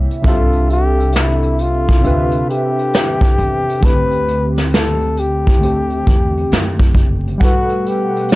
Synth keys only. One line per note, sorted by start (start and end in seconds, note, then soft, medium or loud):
0.00 0.22 C3 medium
0.00 0.26 A#3 medium
0.00 0.26 E4 medium
0.00 0.25 E5 medium
0.22 1.53 C3 medium
0.22 1.53 C4 medium
0.22 1.54 D4 medium
0.22 1.54 E5 medium
0.27 1.55 G4 medium
0.27 1.56 A4 medium
2.00 3.31 C3 medium
2.00 3.32 C4 medium
2.00 3.33 D4 medium
2.00 3.33 E5 medium
2.05 3.34 G4 medium
2.05 3.34 B4 medium
3.80 5.11 D3 medium
3.80 5.12 A3 medium
3.85 5.13 C4 medium
3.85 5.14 G4 medium
5.59 6.90 D3 medium
5.59 6.91 A3 medium
5.63 6.92 C4 medium
5.63 6.93 G4 medium
7.38 8.35 G3 medium
7.38 8.35 F#5 medium
7.42 8.35 A4 medium
7.42 8.35 B4 medium